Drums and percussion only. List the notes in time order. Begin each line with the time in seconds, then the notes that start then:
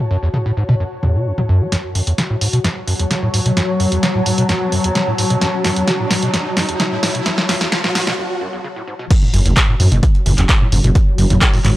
0.34 mid tom
0.69 mid tom
1.03 mid tom
1.38 mid tom
1.72 snare, closed hi-hat
1.95 open hi-hat
2.07 closed hi-hat
2.18 snare, closed hi-hat
2.41 open hi-hat
2.53 closed hi-hat
2.64 snare, closed hi-hat
2.88 open hi-hat
3.00 closed hi-hat
3.11 snare, closed hi-hat
3.34 open hi-hat
3.46 closed hi-hat
3.57 snare, closed hi-hat
3.80 open hi-hat
3.92 closed hi-hat
4.03 snare, closed hi-hat
4.26 open hi-hat
4.38 closed hi-hat
4.49 snare, closed hi-hat
4.72 open hi-hat
4.84 closed hi-hat
4.95 snare, closed hi-hat
5.18 open hi-hat
5.30 closed hi-hat
5.41 snare, closed hi-hat
5.64 snare, open hi-hat
5.76 closed hi-hat
5.88 snare, closed hi-hat
6.11 snare, open hi-hat
6.23 closed hi-hat
6.34 snare, closed hi-hat
6.57 snare, open hi-hat
6.69 closed hi-hat
6.80 snare, closed hi-hat
7.03 snare, open hi-hat
7.15 closed hi-hat
7.26 snare, closed hi-hat
7.38 snare
7.49 snare, open hi-hat
7.61 snare, closed hi-hat
7.72 snare, closed hi-hat
7.84 snare
7.95 snare, open hi-hat
8.07 snare, closed hi-hat
9.11 kick, closed hi-hat, crash
9.23 mid tom
9.34 closed hi-hat, open hi-hat
9.46 closed hi-hat
9.57 kick, snare, clap, closed hi-hat, mid tom
9.80 closed hi-hat, open hi-hat
9.92 closed hi-hat, mid tom
10.03 kick, closed hi-hat
10.15 closed hi-hat
10.26 closed hi-hat, open hi-hat, mid tom
10.38 clap, closed hi-hat
10.49 kick, snare, clap, closed hi-hat
10.61 mid tom
10.72 closed hi-hat, open hi-hat
10.84 closed hi-hat
10.95 kick, closed hi-hat, mid tom
11.18 closed hi-hat, open hi-hat
11.30 snare, closed hi-hat, mid tom
11.41 kick, snare, clap, closed hi-hat
11.53 snare, open hi-hat
11.65 clap, closed hi-hat, open hi-hat, mid tom